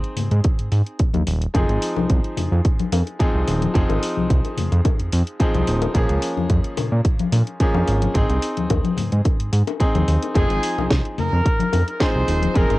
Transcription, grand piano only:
Already playing: C4 D#4 G#4
1.54 F3 G#3 C4 D#4 G#4
3.19 F3 G#3 C4 D#4 G#4
3.74 F3 G#3 C4 D#4 G#4
5.40 F3 G#3 C4 D#4 G#4
5.94 F3 G#3 A#3 C#4 G#4
7.60 F3 G#3 A#3 C#4 G#4
8.14 C4 D#4 G#4
9.80 C4 D#4 G#4
10.34 F3 G#3 C4 D#4 G#4
12.00 F3 G#3 C4 D#4 G#4
12.54 F3 G#3 C4 D#4 G#4

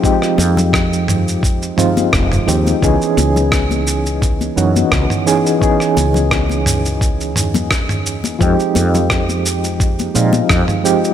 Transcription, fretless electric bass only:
0.38 F2
2.13 F1
2.48 D#2
2.82 C#2
3.17 C#2
4.57 F#2
4.92 C#2
5.97 C#2
7.36 E2
8.41 F2
8.76 F2
10.15 A#2
10.50 F2

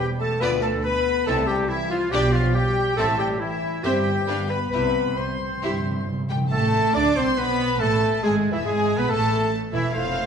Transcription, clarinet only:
0.21 A4
0.41 B4
0.63 A4
0.85 B4
1.27 A4
1.47 G4
1.69 E4
1.91 F4
2.11 G4
2.32 F4
2.55 G4
2.97 A4
3.18 G4
3.39 E4
3.83 G4
4.49 B4
4.71 B4
5.17 C5
6.51 A4
6.95 D5
7.17 C5
7.38 B4
7.81 A4
8.23 G#4
8.52 E4
8.66 G#4
8.98 B4
9.10 A4
9.74 E4
9.95 C5

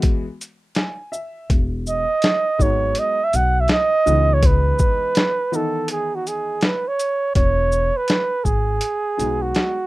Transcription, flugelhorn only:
1.89 D#5
2.62 C#5
2.99 D#5
3.24 E5
3.36 F#5
3.60 E5
3.72 D#5
4.34 C#5
4.46 B4
5.56 A4
5.92 G#4
6.15 F#4
6.28 G#4
6.65 B4
6.88 C#5
7.36 C#5
7.97 B4
8.44 G#4
9.42 F#4

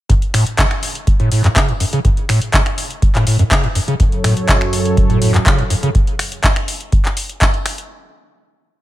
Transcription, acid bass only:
0.10 F#2
0.34 A2
0.58 C#3
1.20 A2
1.32 A2
1.44 F#2
1.56 C#3
1.69 G#2
1.80 F#2
1.93 C#3
2.05 F#2
2.29 A2
2.54 C#3
3.15 A2
3.27 A2
3.39 F#2
3.51 C#3
3.64 G#2
3.75 F#2
3.88 C#3
4.00 F#2
4.24 A2
4.48 C#3
5.10 A2
5.22 A2
5.34 F#2
5.46 C#3
5.59 G#2
5.70 F#2
5.83 C#3

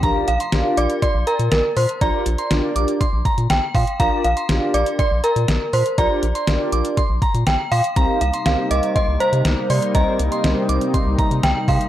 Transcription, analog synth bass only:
0.03 A#1
0.28 A#1
0.53 A#1
0.77 A#1
1.15 A#1
1.39 A#2
1.52 A#1
1.77 A#2
2.01 A#1
2.26 A#1
2.51 A#1
2.76 A#1
3.13 A#1
3.38 A#2
3.50 A#1
3.75 A#2
4.00 A#1
4.24 A#1
4.49 A#1
4.74 A#1
5.11 A#1
5.36 A#2
5.48 A#1
5.73 A#2
5.98 A#1
6.23 A#1
6.48 A#1
6.72 A#1
7.10 A#1
7.34 A#2
7.47 A#1
7.72 A#2
7.96 C2
8.21 C2
8.46 C2
8.71 C2
9.08 C2
9.33 C3
9.45 C2
9.70 C3
9.95 C2
10.19 C2
10.44 C2
10.69 C2
11.06 C2
11.31 C3
11.43 C2
11.68 C3

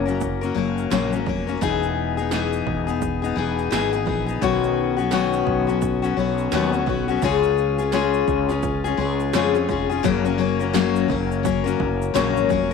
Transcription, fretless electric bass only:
Already playing: F#1
0.56 F#1
0.91 A#1
1.26 F1
1.62 E1
2.67 E1
3.37 E1
3.72 G#1
4.07 A#1
4.42 B1
5.47 B1
6.17 B1
6.52 D#2
6.87 B1
7.22 C#2
8.28 C#2
8.98 C#2
9.34 F2
9.69 F1
10.04 F#1
11.10 F#1
11.80 F#1
12.15 A#1
12.50 F1

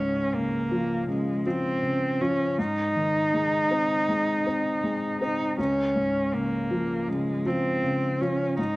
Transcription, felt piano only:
Already playing: C#2 G#2
0.34 C#3
0.71 F3
1.08 C#3
1.46 F3
1.83 C#3
2.21 F3
2.58 G#2
2.96 D#3
3.34 G#3
3.70 C4
4.09 G#3
4.46 C4
4.83 G#3
5.21 C4
5.58 C#2
5.96 G#2
6.33 C#3
6.71 F3
7.08 C#3
7.46 F3
7.83 C#3
8.21 F3
8.58 G#2

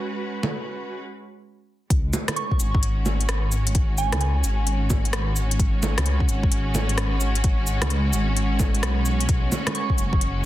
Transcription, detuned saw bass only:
1.90 C#2
2.60 G#1
4.13 C#2
4.44 G#1
5.98 C#2
6.29 G#1
6.51 G#1
7.82 C#2
8.13 G#1
8.83 B1
9.29 B1
9.98 F#1

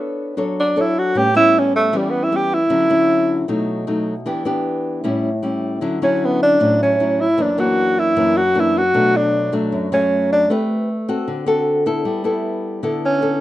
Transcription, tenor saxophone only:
0.60 D4
0.81 E4
0.98 F#4
1.18 G4
1.36 E4
1.59 C#4
1.76 A3
1.97 G3
2.10 B3
2.23 E4
2.36 G4
2.54 E4
6.04 C#4
6.25 B3
6.43 D4
6.83 C#4
7.21 E4
7.42 D4
7.60 F#4
7.99 E4
8.37 F#4
8.59 E4
8.77 F#4
9.16 D4
9.94 C#4
10.32 D4
13.05 C#4

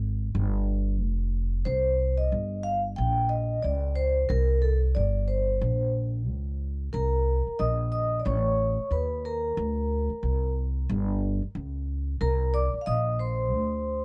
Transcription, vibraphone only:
1.65 C5
2.18 D#5
2.63 F5
2.96 G5
3.29 D#5
3.62 D5
3.95 C5
4.29 A#4
4.62 A4
4.95 D5
5.28 C5
6.93 A#4 A#5
7.59 D#5 D#6
7.92 D#5 D#6
8.20 D5
8.25 C#5 C#6
8.92 B4 B5
9.25 A#4 A#5
12.21 A#4 A#5
12.54 D5 D6
12.81 F5
12.86 D#5 D#6
13.19 C5 C6

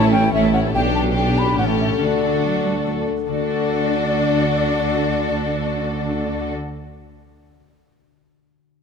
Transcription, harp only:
Already playing: A2 E3 A3 E4 E5
0.14 E4
0.34 E5
0.55 A3
0.75 B2
0.96 B3
1.17 D4
1.38 G4
1.59 A2
1.79 G4 A4
2.01 D3
2.22 A3
2.65 F#4
2.86 A4
3.07 D4
3.28 D3
3.35 D4
3.42 F#4
3.49 A4
3.56 F#5

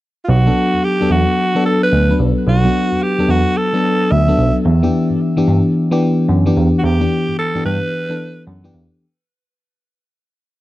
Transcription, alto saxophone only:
0.24 F4
0.30 F#4
0.84 G4
1.11 F#4
1.66 A4
1.83 B4
2.48 F#4
3.03 G4
3.30 F#4
3.57 A4
4.12 E5
6.79 F#4
6.84 G4
7.39 A4
7.66 B4

